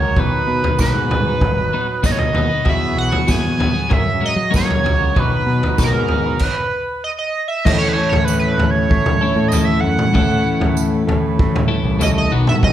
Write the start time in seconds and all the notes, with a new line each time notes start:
Already playing: C#2 F#3 G#3 A#3 C#4 G#4 C#5
0.02 C#4 F#4 A#4
0.16 B1 B2 D#3 F#3 B3 D#4 B4, kick, floor tom
0.47 B2
0.63 F#3 B3 D#4 B4, floor tom
0.78 B1 B2 D#3 F#3 B3 D#4 B4, kick, snare, tambourine
0.93 G#2
1.10 F#3 B3 D#4 B4, floor tom, mid tom
1.26 F#3 B3 D#4 B4
1.41 G#1, kick, floor tom, mid tom
1.57 muted clean electric guitar stroke
1.73 F#3 B3 D#4 B4
1.88 muted clean electric guitar stroke
2.03 B2 D#3 F#3 B3 D#4 B4 D#5, kick, snare, tambourine
2.11 C#5
2.18 D#5, floor tom
2.33 D#2 F#3 B3 D#4 B4, floor tom
2.49 F#3 B3 D#4 B4
2.64 E2 E3 F#3 B3 E4 F#4 G#4, kick, floor tom
2.69 E5
2.96 B1 F#5
3.11 B3 F#4 G#4, floor tom
3.27 E2 E3 F#3 B3 F#4 G#4 G#5, kick, snare, tambourine
3.43 E2
3.58 F#3 B3 F#4 G#4, floor tom, mid tom
3.73 B3 F#4 G#4
3.89 F#2 F#3 G#3 A#3 C#4 F#4 A#4 E5, kick, floor tom, mid tom
4.04 muted clean electric guitar stroke
4.21 G#3 C#4 F#4 A#4
4.26 D#5
4.35 F#3, muted clean electric guitar stroke
4.51 F#3 G#3 C#4 F#4 A#4, kick, tambourine
4.55 C#5, snare
4.70 floor tom
4.83 C#2 G#3 C#4 F#4 A#4, floor tom
4.99 C#4 F#4 A#4
5.14 B1 B2 D#3 F#3 B3 D#4 B4 D#5, kick, floor tom
5.19 B4
5.46 B2
5.62 F#3 B3 D#4 B4, floor tom
5.77 B1 B2 D#3 F#3 B3 D#4 B4, kick, snare, tambourine
5.84 A#4
5.93 G#2
6.08 F#3 B3 D#4 B4, floor tom
6.26 F#3 B3 D#4 B4
6.39 B4, kick, crash
7.04 D#5
7.19 D#5
7.48 E5
7.65 A2 E3 A3 C#4 E4 A4 C#5 D#5, kick, floor tom, crash
7.78 C#5
7.89 B4
7.93 C#5
8.09 A2 C#5, floor tom
8.25 B4, tambourine
8.39 B4
8.58 A2, floor tom
8.71 C#5
8.90 A2, kick
9.06 floor tom, mid tom
9.21 A2 E3 A3 C#4 E4 A4
9.36 A2
9.48 A2 D#5, tambourine
9.53 E3 A3 C#4 E4 A4, floor tom
9.65 E5
9.80 F#2 F#5
9.99 mid tom
10.13 A2 E3 A3 C#4 E4 A4 B4, kick, floor tom
10.60 A2, floor tom
10.77 tambourine
11.07 A2, floor tom
11.39 A2, kick
11.56 floor tom, mid tom
11.68 A2 E3 A3 C#4 E4 A4
11.84 C2
11.99 A2 E3 A3 C#4 E4 A4, floor tom, tambourine
12.03 D#5
12.18 D#5
12.31 B1 B2 D#3 F#3 B3 F#4
12.47 E5, mid tom
12.63 B1 D#5, kick, floor tom